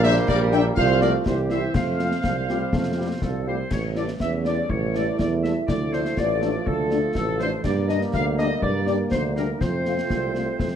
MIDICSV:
0, 0, Header, 1, 9, 480
1, 0, Start_track
1, 0, Tempo, 490597
1, 756, Time_signature, 2, 2, 24, 8
1, 10525, End_track
2, 0, Start_track
2, 0, Title_t, "Flute section"
2, 0, Program_c, 0, 73
2, 39, Note_on_c, 0, 76, 127
2, 98, Note_off_c, 0, 76, 0
2, 269, Note_on_c, 0, 74, 104
2, 328, Note_off_c, 0, 74, 0
2, 513, Note_on_c, 0, 79, 118
2, 571, Note_off_c, 0, 79, 0
2, 749, Note_on_c, 0, 77, 103
2, 808, Note_off_c, 0, 77, 0
2, 988, Note_on_c, 0, 74, 88
2, 1047, Note_off_c, 0, 74, 0
2, 1235, Note_on_c, 0, 72, 77
2, 1294, Note_off_c, 0, 72, 0
2, 1471, Note_on_c, 0, 76, 82
2, 1696, Note_off_c, 0, 76, 0
2, 1708, Note_on_c, 0, 77, 77
2, 2855, Note_off_c, 0, 77, 0
2, 3150, Note_on_c, 0, 69, 63
2, 3375, Note_off_c, 0, 69, 0
2, 3387, Note_on_c, 0, 72, 64
2, 3629, Note_on_c, 0, 73, 67
2, 3630, Note_off_c, 0, 72, 0
2, 3871, Note_off_c, 0, 73, 0
2, 3871, Note_on_c, 0, 74, 80
2, 3930, Note_off_c, 0, 74, 0
2, 4104, Note_on_c, 0, 76, 83
2, 4331, Note_off_c, 0, 76, 0
2, 4357, Note_on_c, 0, 74, 75
2, 4578, Note_off_c, 0, 74, 0
2, 4593, Note_on_c, 0, 73, 66
2, 4833, Note_off_c, 0, 73, 0
2, 4836, Note_on_c, 0, 74, 77
2, 5058, Note_off_c, 0, 74, 0
2, 5077, Note_on_c, 0, 74, 83
2, 5135, Note_off_c, 0, 74, 0
2, 5317, Note_on_c, 0, 76, 63
2, 5539, Note_off_c, 0, 76, 0
2, 5557, Note_on_c, 0, 74, 70
2, 5616, Note_off_c, 0, 74, 0
2, 5801, Note_on_c, 0, 72, 70
2, 5859, Note_off_c, 0, 72, 0
2, 6040, Note_on_c, 0, 74, 90
2, 6484, Note_off_c, 0, 74, 0
2, 6513, Note_on_c, 0, 69, 72
2, 6960, Note_off_c, 0, 69, 0
2, 6992, Note_on_c, 0, 69, 79
2, 7216, Note_off_c, 0, 69, 0
2, 7227, Note_on_c, 0, 72, 88
2, 7454, Note_off_c, 0, 72, 0
2, 7466, Note_on_c, 0, 74, 77
2, 7693, Note_off_c, 0, 74, 0
2, 7702, Note_on_c, 0, 75, 91
2, 7761, Note_off_c, 0, 75, 0
2, 7948, Note_on_c, 0, 77, 101
2, 8175, Note_off_c, 0, 77, 0
2, 8197, Note_on_c, 0, 75, 83
2, 8420, Note_off_c, 0, 75, 0
2, 8426, Note_on_c, 0, 74, 92
2, 8484, Note_off_c, 0, 74, 0
2, 8673, Note_on_c, 0, 74, 82
2, 8731, Note_off_c, 0, 74, 0
2, 8910, Note_on_c, 0, 72, 76
2, 9137, Note_off_c, 0, 72, 0
2, 9158, Note_on_c, 0, 70, 66
2, 9381, Note_off_c, 0, 70, 0
2, 9393, Note_on_c, 0, 72, 71
2, 10525, Note_off_c, 0, 72, 0
2, 10525, End_track
3, 0, Start_track
3, 0, Title_t, "Woodwind section"
3, 0, Program_c, 1, 71
3, 45, Note_on_c, 1, 72, 112
3, 264, Note_off_c, 1, 72, 0
3, 284, Note_on_c, 1, 70, 97
3, 504, Note_off_c, 1, 70, 0
3, 531, Note_on_c, 1, 76, 108
3, 636, Note_off_c, 1, 76, 0
3, 761, Note_on_c, 1, 72, 119
3, 982, Note_off_c, 1, 72, 0
3, 1001, Note_on_c, 1, 70, 86
3, 1108, Note_off_c, 1, 70, 0
3, 1232, Note_on_c, 1, 67, 66
3, 1457, Note_off_c, 1, 67, 0
3, 1466, Note_on_c, 1, 72, 76
3, 1706, Note_off_c, 1, 72, 0
3, 1718, Note_on_c, 1, 72, 87
3, 3116, Note_off_c, 1, 72, 0
3, 3157, Note_on_c, 1, 69, 60
3, 3378, Note_off_c, 1, 69, 0
3, 3398, Note_on_c, 1, 72, 67
3, 3619, Note_off_c, 1, 72, 0
3, 3641, Note_on_c, 1, 73, 89
3, 3747, Note_off_c, 1, 73, 0
3, 3883, Note_on_c, 1, 74, 80
3, 3988, Note_off_c, 1, 74, 0
3, 4121, Note_on_c, 1, 76, 79
3, 4227, Note_off_c, 1, 76, 0
3, 4362, Note_on_c, 1, 74, 75
3, 4581, Note_off_c, 1, 74, 0
3, 4601, Note_on_c, 1, 73, 87
3, 4837, Note_off_c, 1, 73, 0
3, 4844, Note_on_c, 1, 74, 75
3, 5062, Note_off_c, 1, 74, 0
3, 5077, Note_on_c, 1, 74, 82
3, 5184, Note_off_c, 1, 74, 0
3, 5308, Note_on_c, 1, 76, 68
3, 5417, Note_off_c, 1, 76, 0
3, 5552, Note_on_c, 1, 74, 90
3, 5776, Note_off_c, 1, 74, 0
3, 5792, Note_on_c, 1, 72, 84
3, 6033, Note_off_c, 1, 72, 0
3, 6042, Note_on_c, 1, 74, 85
3, 6518, Note_off_c, 1, 74, 0
3, 6526, Note_on_c, 1, 69, 86
3, 6991, Note_off_c, 1, 69, 0
3, 7003, Note_on_c, 1, 69, 90
3, 7222, Note_off_c, 1, 69, 0
3, 7251, Note_on_c, 1, 72, 92
3, 7355, Note_off_c, 1, 72, 0
3, 7477, Note_on_c, 1, 74, 80
3, 7700, Note_off_c, 1, 74, 0
3, 7725, Note_on_c, 1, 75, 96
3, 7831, Note_off_c, 1, 75, 0
3, 7963, Note_on_c, 1, 77, 88
3, 8069, Note_off_c, 1, 77, 0
3, 8205, Note_on_c, 1, 75, 98
3, 8424, Note_off_c, 1, 75, 0
3, 8440, Note_on_c, 1, 74, 93
3, 8661, Note_off_c, 1, 74, 0
3, 8680, Note_on_c, 1, 74, 91
3, 8787, Note_off_c, 1, 74, 0
3, 8914, Note_on_c, 1, 72, 84
3, 9022, Note_off_c, 1, 72, 0
3, 9164, Note_on_c, 1, 70, 75
3, 9271, Note_off_c, 1, 70, 0
3, 9402, Note_on_c, 1, 72, 81
3, 10525, Note_off_c, 1, 72, 0
3, 10525, End_track
4, 0, Start_track
4, 0, Title_t, "Trumpet section"
4, 0, Program_c, 2, 61
4, 38, Note_on_c, 2, 76, 127
4, 146, Note_off_c, 2, 76, 0
4, 277, Note_on_c, 2, 74, 115
4, 385, Note_off_c, 2, 74, 0
4, 517, Note_on_c, 2, 79, 112
4, 625, Note_off_c, 2, 79, 0
4, 743, Note_on_c, 2, 77, 111
4, 972, Note_off_c, 2, 77, 0
4, 989, Note_on_c, 2, 74, 105
4, 1098, Note_off_c, 2, 74, 0
4, 1236, Note_on_c, 2, 72, 81
4, 1344, Note_off_c, 2, 72, 0
4, 1473, Note_on_c, 2, 76, 82
4, 1697, Note_off_c, 2, 76, 0
4, 1713, Note_on_c, 2, 77, 87
4, 3353, Note_off_c, 2, 77, 0
4, 3878, Note_on_c, 2, 69, 50
4, 3964, Note_off_c, 2, 69, 0
4, 4367, Note_on_c, 2, 69, 49
4, 4450, Note_off_c, 2, 69, 0
4, 4838, Note_on_c, 2, 69, 58
4, 4923, Note_off_c, 2, 69, 0
4, 5320, Note_on_c, 2, 69, 49
4, 5405, Note_off_c, 2, 69, 0
4, 5795, Note_on_c, 2, 69, 59
4, 5881, Note_off_c, 2, 69, 0
4, 6275, Note_on_c, 2, 69, 56
4, 6361, Note_off_c, 2, 69, 0
4, 6754, Note_on_c, 2, 69, 56
4, 6841, Note_off_c, 2, 69, 0
4, 7226, Note_on_c, 2, 69, 57
4, 7314, Note_off_c, 2, 69, 0
4, 7715, Note_on_c, 2, 67, 63
4, 7802, Note_off_c, 2, 67, 0
4, 8206, Note_on_c, 2, 67, 61
4, 8290, Note_off_c, 2, 67, 0
4, 8664, Note_on_c, 2, 67, 60
4, 8753, Note_off_c, 2, 67, 0
4, 9155, Note_on_c, 2, 67, 51
4, 9242, Note_off_c, 2, 67, 0
4, 9635, Note_on_c, 2, 72, 51
4, 9722, Note_off_c, 2, 72, 0
4, 10109, Note_on_c, 2, 72, 52
4, 10197, Note_off_c, 2, 72, 0
4, 10525, End_track
5, 0, Start_track
5, 0, Title_t, "Euphonium"
5, 0, Program_c, 3, 58
5, 0, Note_on_c, 3, 62, 121
5, 274, Note_on_c, 3, 67, 97
5, 289, Note_off_c, 3, 62, 0
5, 743, Note_off_c, 3, 67, 0
5, 749, Note_on_c, 3, 65, 113
5, 1198, Note_off_c, 3, 65, 0
5, 1239, Note_on_c, 3, 64, 80
5, 1712, Note_on_c, 3, 60, 69
5, 1727, Note_off_c, 3, 64, 0
5, 3392, Note_off_c, 3, 60, 0
5, 4110, Note_on_c, 3, 61, 61
5, 4558, Note_off_c, 3, 61, 0
5, 4591, Note_on_c, 3, 64, 90
5, 6041, Note_on_c, 3, 65, 83
5, 6056, Note_off_c, 3, 64, 0
5, 7471, Note_off_c, 3, 65, 0
5, 7477, Note_on_c, 3, 62, 84
5, 8438, Note_on_c, 3, 58, 72
5, 8453, Note_off_c, 3, 62, 0
5, 8914, Note_off_c, 3, 58, 0
5, 8920, Note_on_c, 3, 62, 71
5, 9403, Note_on_c, 3, 65, 87
5, 9418, Note_off_c, 3, 62, 0
5, 10525, Note_off_c, 3, 65, 0
5, 10525, End_track
6, 0, Start_track
6, 0, Title_t, "French horn section"
6, 0, Program_c, 4, 60
6, 37, Note_on_c, 4, 58, 79
6, 38, Note_on_c, 4, 55, 86
6, 38, Note_on_c, 4, 62, 81
6, 123, Note_off_c, 4, 58, 0
6, 124, Note_off_c, 4, 55, 0
6, 124, Note_off_c, 4, 62, 0
6, 513, Note_on_c, 4, 55, 78
6, 515, Note_on_c, 4, 62, 77
6, 516, Note_on_c, 4, 58, 86
6, 600, Note_off_c, 4, 55, 0
6, 602, Note_off_c, 4, 58, 0
6, 602, Note_off_c, 4, 62, 0
6, 993, Note_on_c, 4, 53, 74
6, 993, Note_on_c, 4, 65, 73
6, 994, Note_on_c, 4, 57, 70
6, 1080, Note_off_c, 4, 53, 0
6, 1080, Note_off_c, 4, 65, 0
6, 1081, Note_off_c, 4, 57, 0
6, 1478, Note_on_c, 4, 55, 65
6, 1478, Note_on_c, 4, 60, 66
6, 1483, Note_on_c, 4, 64, 62
6, 1564, Note_off_c, 4, 55, 0
6, 1564, Note_off_c, 4, 60, 0
6, 1567, Note_off_c, 4, 64, 0
6, 1955, Note_on_c, 4, 65, 52
6, 1958, Note_on_c, 4, 60, 53
6, 1960, Note_on_c, 4, 57, 53
6, 2041, Note_off_c, 4, 65, 0
6, 2043, Note_off_c, 4, 60, 0
6, 2045, Note_off_c, 4, 57, 0
6, 2435, Note_on_c, 4, 65, 54
6, 2436, Note_on_c, 4, 60, 58
6, 2439, Note_on_c, 4, 57, 56
6, 2521, Note_off_c, 4, 65, 0
6, 2522, Note_off_c, 4, 60, 0
6, 2524, Note_off_c, 4, 57, 0
6, 2908, Note_on_c, 4, 57, 56
6, 2911, Note_on_c, 4, 60, 53
6, 2911, Note_on_c, 4, 65, 52
6, 2995, Note_off_c, 4, 57, 0
6, 2998, Note_off_c, 4, 60, 0
6, 2998, Note_off_c, 4, 65, 0
6, 3394, Note_on_c, 4, 65, 50
6, 3395, Note_on_c, 4, 57, 55
6, 3398, Note_on_c, 4, 60, 54
6, 3480, Note_off_c, 4, 65, 0
6, 3481, Note_off_c, 4, 57, 0
6, 3483, Note_off_c, 4, 60, 0
6, 3870, Note_on_c, 4, 57, 51
6, 3870, Note_on_c, 4, 64, 52
6, 3871, Note_on_c, 4, 55, 51
6, 3957, Note_off_c, 4, 57, 0
6, 3957, Note_off_c, 4, 64, 0
6, 3958, Note_off_c, 4, 55, 0
6, 4352, Note_on_c, 4, 55, 49
6, 4352, Note_on_c, 4, 57, 51
6, 4352, Note_on_c, 4, 64, 50
6, 4438, Note_off_c, 4, 55, 0
6, 4439, Note_off_c, 4, 57, 0
6, 4439, Note_off_c, 4, 64, 0
6, 4832, Note_on_c, 4, 55, 50
6, 4833, Note_on_c, 4, 64, 51
6, 4835, Note_on_c, 4, 57, 48
6, 4919, Note_off_c, 4, 55, 0
6, 4919, Note_off_c, 4, 64, 0
6, 4921, Note_off_c, 4, 57, 0
6, 5318, Note_on_c, 4, 57, 57
6, 5322, Note_on_c, 4, 55, 54
6, 5322, Note_on_c, 4, 64, 56
6, 5403, Note_off_c, 4, 57, 0
6, 5407, Note_off_c, 4, 55, 0
6, 5407, Note_off_c, 4, 64, 0
6, 5801, Note_on_c, 4, 57, 53
6, 5804, Note_on_c, 4, 53, 49
6, 5804, Note_on_c, 4, 62, 53
6, 5886, Note_off_c, 4, 57, 0
6, 5888, Note_off_c, 4, 53, 0
6, 5888, Note_off_c, 4, 62, 0
6, 6276, Note_on_c, 4, 53, 61
6, 6277, Note_on_c, 4, 57, 59
6, 6277, Note_on_c, 4, 62, 58
6, 6362, Note_off_c, 4, 53, 0
6, 6363, Note_off_c, 4, 57, 0
6, 6363, Note_off_c, 4, 62, 0
6, 6757, Note_on_c, 4, 57, 52
6, 6758, Note_on_c, 4, 62, 57
6, 6759, Note_on_c, 4, 53, 58
6, 6843, Note_off_c, 4, 57, 0
6, 6843, Note_off_c, 4, 62, 0
6, 6844, Note_off_c, 4, 53, 0
6, 7233, Note_on_c, 4, 57, 63
6, 7237, Note_on_c, 4, 53, 62
6, 7237, Note_on_c, 4, 62, 63
6, 7320, Note_off_c, 4, 57, 0
6, 7323, Note_off_c, 4, 53, 0
6, 7323, Note_off_c, 4, 62, 0
6, 7721, Note_on_c, 4, 55, 60
6, 7722, Note_on_c, 4, 62, 65
6, 7723, Note_on_c, 4, 58, 59
6, 7806, Note_off_c, 4, 55, 0
6, 7807, Note_off_c, 4, 62, 0
6, 7808, Note_off_c, 4, 58, 0
6, 8198, Note_on_c, 4, 58, 66
6, 8199, Note_on_c, 4, 55, 65
6, 8199, Note_on_c, 4, 62, 63
6, 8284, Note_off_c, 4, 58, 0
6, 8285, Note_off_c, 4, 55, 0
6, 8285, Note_off_c, 4, 62, 0
6, 8677, Note_on_c, 4, 55, 58
6, 8677, Note_on_c, 4, 58, 55
6, 8677, Note_on_c, 4, 62, 64
6, 8763, Note_off_c, 4, 55, 0
6, 8763, Note_off_c, 4, 62, 0
6, 8764, Note_off_c, 4, 58, 0
6, 9162, Note_on_c, 4, 55, 56
6, 9162, Note_on_c, 4, 58, 56
6, 9163, Note_on_c, 4, 62, 57
6, 9247, Note_off_c, 4, 55, 0
6, 9247, Note_off_c, 4, 58, 0
6, 9248, Note_off_c, 4, 62, 0
6, 9642, Note_on_c, 4, 57, 52
6, 9644, Note_on_c, 4, 60, 46
6, 9644, Note_on_c, 4, 65, 53
6, 9728, Note_off_c, 4, 57, 0
6, 9729, Note_off_c, 4, 60, 0
6, 9729, Note_off_c, 4, 65, 0
6, 10124, Note_on_c, 4, 57, 52
6, 10124, Note_on_c, 4, 65, 53
6, 10125, Note_on_c, 4, 60, 53
6, 10209, Note_off_c, 4, 65, 0
6, 10210, Note_off_c, 4, 57, 0
6, 10210, Note_off_c, 4, 60, 0
6, 10525, End_track
7, 0, Start_track
7, 0, Title_t, "Trombone section"
7, 0, Program_c, 5, 61
7, 0, Note_on_c, 5, 55, 103
7, 0, Note_on_c, 5, 58, 97
7, 713, Note_off_c, 5, 58, 0
7, 754, Note_off_c, 5, 55, 0
7, 755, Note_on_c, 5, 57, 84
7, 756, Note_on_c, 5, 53, 74
7, 1202, Note_off_c, 5, 53, 0
7, 1233, Note_on_c, 5, 52, 59
7, 1235, Note_off_c, 5, 57, 0
7, 1236, Note_on_c, 5, 55, 64
7, 1708, Note_on_c, 5, 53, 55
7, 1713, Note_off_c, 5, 52, 0
7, 1713, Note_on_c, 5, 57, 57
7, 1715, Note_off_c, 5, 55, 0
7, 2115, Note_off_c, 5, 57, 0
7, 2143, Note_off_c, 5, 53, 0
7, 2199, Note_on_c, 5, 53, 58
7, 2306, Note_off_c, 5, 53, 0
7, 2428, Note_on_c, 5, 55, 69
7, 2654, Note_off_c, 5, 55, 0
7, 2672, Note_on_c, 5, 57, 69
7, 2906, Note_on_c, 5, 55, 68
7, 2913, Note_off_c, 5, 57, 0
7, 3016, Note_off_c, 5, 55, 0
7, 3142, Note_on_c, 5, 53, 52
7, 3370, Note_off_c, 5, 53, 0
7, 3386, Note_on_c, 5, 55, 62
7, 3495, Note_off_c, 5, 55, 0
7, 3625, Note_on_c, 5, 55, 56
7, 3628, Note_on_c, 5, 57, 62
7, 5510, Note_off_c, 5, 55, 0
7, 5511, Note_off_c, 5, 57, 0
7, 5558, Note_on_c, 5, 53, 62
7, 5559, Note_on_c, 5, 57, 66
7, 7438, Note_off_c, 5, 57, 0
7, 7477, Note_off_c, 5, 53, 0
7, 7483, Note_on_c, 5, 55, 68
7, 7483, Note_on_c, 5, 58, 71
7, 9362, Note_off_c, 5, 55, 0
7, 9362, Note_off_c, 5, 58, 0
7, 9398, Note_on_c, 5, 57, 61
7, 9400, Note_on_c, 5, 60, 60
7, 10525, Note_off_c, 5, 57, 0
7, 10525, Note_off_c, 5, 60, 0
7, 10525, End_track
8, 0, Start_track
8, 0, Title_t, "Tuba"
8, 0, Program_c, 6, 58
8, 0, Note_on_c, 6, 34, 114
8, 204, Note_off_c, 6, 34, 0
8, 287, Note_on_c, 6, 34, 101
8, 681, Note_off_c, 6, 34, 0
8, 758, Note_on_c, 6, 36, 111
8, 1156, Note_off_c, 6, 36, 0
8, 1235, Note_on_c, 6, 36, 84
8, 1635, Note_off_c, 6, 36, 0
8, 1715, Note_on_c, 6, 41, 67
8, 2114, Note_off_c, 6, 41, 0
8, 2190, Note_on_c, 6, 36, 69
8, 2592, Note_off_c, 6, 36, 0
8, 2675, Note_on_c, 6, 41, 65
8, 3074, Note_off_c, 6, 41, 0
8, 3162, Note_on_c, 6, 36, 75
8, 3557, Note_off_c, 6, 36, 0
8, 3641, Note_on_c, 6, 33, 74
8, 4037, Note_off_c, 6, 33, 0
8, 4123, Note_on_c, 6, 40, 72
8, 4518, Note_off_c, 6, 40, 0
8, 4592, Note_on_c, 6, 33, 75
8, 4992, Note_off_c, 6, 33, 0
8, 5081, Note_on_c, 6, 40, 73
8, 5445, Note_off_c, 6, 40, 0
8, 5564, Note_on_c, 6, 38, 64
8, 5959, Note_off_c, 6, 38, 0
8, 6038, Note_on_c, 6, 33, 79
8, 6436, Note_off_c, 6, 33, 0
8, 6518, Note_on_c, 6, 38, 70
8, 6916, Note_off_c, 6, 38, 0
8, 7002, Note_on_c, 6, 33, 78
8, 7398, Note_off_c, 6, 33, 0
8, 7477, Note_on_c, 6, 43, 84
8, 7876, Note_off_c, 6, 43, 0
8, 7955, Note_on_c, 6, 38, 84
8, 8356, Note_off_c, 6, 38, 0
8, 8441, Note_on_c, 6, 43, 85
8, 8839, Note_off_c, 6, 43, 0
8, 8921, Note_on_c, 6, 38, 77
8, 9319, Note_off_c, 6, 38, 0
8, 9404, Note_on_c, 6, 41, 64
8, 9801, Note_off_c, 6, 41, 0
8, 9880, Note_on_c, 6, 36, 61
8, 10279, Note_off_c, 6, 36, 0
8, 10363, Note_on_c, 6, 41, 63
8, 10525, Note_off_c, 6, 41, 0
8, 10525, End_track
9, 0, Start_track
9, 0, Title_t, "Drums"
9, 36, Note_on_c, 9, 38, 59
9, 134, Note_off_c, 9, 38, 0
9, 153, Note_on_c, 9, 38, 59
9, 251, Note_off_c, 9, 38, 0
9, 276, Note_on_c, 9, 35, 80
9, 276, Note_on_c, 9, 38, 83
9, 374, Note_off_c, 9, 35, 0
9, 374, Note_off_c, 9, 38, 0
9, 511, Note_on_c, 9, 38, 61
9, 609, Note_off_c, 9, 38, 0
9, 754, Note_on_c, 9, 35, 86
9, 851, Note_off_c, 9, 35, 0
9, 987, Note_on_c, 9, 38, 59
9, 1085, Note_off_c, 9, 38, 0
9, 1231, Note_on_c, 9, 35, 68
9, 1231, Note_on_c, 9, 38, 76
9, 1329, Note_off_c, 9, 35, 0
9, 1329, Note_off_c, 9, 38, 0
9, 1466, Note_on_c, 9, 38, 52
9, 1563, Note_off_c, 9, 38, 0
9, 1705, Note_on_c, 9, 35, 88
9, 1705, Note_on_c, 9, 38, 73
9, 1705, Note_on_c, 9, 49, 34
9, 1803, Note_off_c, 9, 35, 0
9, 1803, Note_off_c, 9, 38, 0
9, 1803, Note_off_c, 9, 49, 0
9, 1947, Note_on_c, 9, 38, 53
9, 2045, Note_off_c, 9, 38, 0
9, 2067, Note_on_c, 9, 38, 55
9, 2165, Note_off_c, 9, 38, 0
9, 2189, Note_on_c, 9, 35, 74
9, 2189, Note_on_c, 9, 38, 75
9, 2287, Note_off_c, 9, 35, 0
9, 2287, Note_off_c, 9, 38, 0
9, 2433, Note_on_c, 9, 38, 52
9, 2531, Note_off_c, 9, 38, 0
9, 2668, Note_on_c, 9, 35, 81
9, 2668, Note_on_c, 9, 38, 66
9, 2765, Note_off_c, 9, 35, 0
9, 2765, Note_off_c, 9, 38, 0
9, 3147, Note_on_c, 9, 35, 72
9, 3147, Note_on_c, 9, 38, 67
9, 3245, Note_off_c, 9, 35, 0
9, 3245, Note_off_c, 9, 38, 0
9, 3629, Note_on_c, 9, 35, 72
9, 3629, Note_on_c, 9, 38, 66
9, 3629, Note_on_c, 9, 49, 43
9, 3727, Note_off_c, 9, 35, 0
9, 3727, Note_off_c, 9, 38, 0
9, 3727, Note_off_c, 9, 49, 0
9, 3869, Note_on_c, 9, 38, 46
9, 3966, Note_off_c, 9, 38, 0
9, 3988, Note_on_c, 9, 38, 53
9, 4085, Note_off_c, 9, 38, 0
9, 4110, Note_on_c, 9, 35, 57
9, 4110, Note_on_c, 9, 38, 65
9, 4208, Note_off_c, 9, 35, 0
9, 4208, Note_off_c, 9, 38, 0
9, 4353, Note_on_c, 9, 38, 52
9, 4451, Note_off_c, 9, 38, 0
9, 4593, Note_on_c, 9, 35, 76
9, 4691, Note_off_c, 9, 35, 0
9, 4838, Note_on_c, 9, 38, 50
9, 4936, Note_off_c, 9, 38, 0
9, 5080, Note_on_c, 9, 35, 65
9, 5080, Note_on_c, 9, 38, 64
9, 5178, Note_off_c, 9, 35, 0
9, 5178, Note_off_c, 9, 38, 0
9, 5324, Note_on_c, 9, 38, 50
9, 5422, Note_off_c, 9, 38, 0
9, 5559, Note_on_c, 9, 35, 71
9, 5559, Note_on_c, 9, 38, 71
9, 5657, Note_off_c, 9, 35, 0
9, 5657, Note_off_c, 9, 38, 0
9, 5799, Note_on_c, 9, 38, 47
9, 5897, Note_off_c, 9, 38, 0
9, 5919, Note_on_c, 9, 38, 50
9, 6017, Note_off_c, 9, 38, 0
9, 6038, Note_on_c, 9, 35, 62
9, 6038, Note_on_c, 9, 38, 67
9, 6136, Note_off_c, 9, 35, 0
9, 6136, Note_off_c, 9, 38, 0
9, 6279, Note_on_c, 9, 38, 48
9, 6376, Note_off_c, 9, 38, 0
9, 6523, Note_on_c, 9, 35, 77
9, 6621, Note_off_c, 9, 35, 0
9, 6756, Note_on_c, 9, 38, 52
9, 6854, Note_off_c, 9, 38, 0
9, 6995, Note_on_c, 9, 35, 69
9, 6995, Note_on_c, 9, 38, 69
9, 7093, Note_off_c, 9, 35, 0
9, 7093, Note_off_c, 9, 38, 0
9, 7235, Note_on_c, 9, 38, 54
9, 7333, Note_off_c, 9, 38, 0
9, 7474, Note_on_c, 9, 35, 73
9, 7474, Note_on_c, 9, 38, 74
9, 7474, Note_on_c, 9, 49, 32
9, 7572, Note_off_c, 9, 35, 0
9, 7572, Note_off_c, 9, 38, 0
9, 7572, Note_off_c, 9, 49, 0
9, 7718, Note_on_c, 9, 38, 52
9, 7816, Note_off_c, 9, 38, 0
9, 7838, Note_on_c, 9, 38, 47
9, 7935, Note_off_c, 9, 38, 0
9, 7960, Note_on_c, 9, 35, 72
9, 7960, Note_on_c, 9, 38, 61
9, 8058, Note_off_c, 9, 35, 0
9, 8058, Note_off_c, 9, 38, 0
9, 8204, Note_on_c, 9, 38, 49
9, 8302, Note_off_c, 9, 38, 0
9, 8436, Note_on_c, 9, 35, 77
9, 8534, Note_off_c, 9, 35, 0
9, 8674, Note_on_c, 9, 38, 43
9, 8772, Note_off_c, 9, 38, 0
9, 8918, Note_on_c, 9, 35, 67
9, 8918, Note_on_c, 9, 38, 70
9, 9016, Note_off_c, 9, 35, 0
9, 9016, Note_off_c, 9, 38, 0
9, 9161, Note_on_c, 9, 38, 52
9, 9259, Note_off_c, 9, 38, 0
9, 9400, Note_on_c, 9, 35, 74
9, 9400, Note_on_c, 9, 38, 65
9, 9498, Note_off_c, 9, 35, 0
9, 9498, Note_off_c, 9, 38, 0
9, 9639, Note_on_c, 9, 38, 46
9, 9736, Note_off_c, 9, 38, 0
9, 9762, Note_on_c, 9, 38, 51
9, 9860, Note_off_c, 9, 38, 0
9, 9884, Note_on_c, 9, 35, 67
9, 9884, Note_on_c, 9, 38, 59
9, 9982, Note_off_c, 9, 35, 0
9, 9982, Note_off_c, 9, 38, 0
9, 10124, Note_on_c, 9, 38, 48
9, 10222, Note_off_c, 9, 38, 0
9, 10365, Note_on_c, 9, 35, 73
9, 10365, Note_on_c, 9, 38, 51
9, 10463, Note_off_c, 9, 35, 0
9, 10463, Note_off_c, 9, 38, 0
9, 10525, End_track
0, 0, End_of_file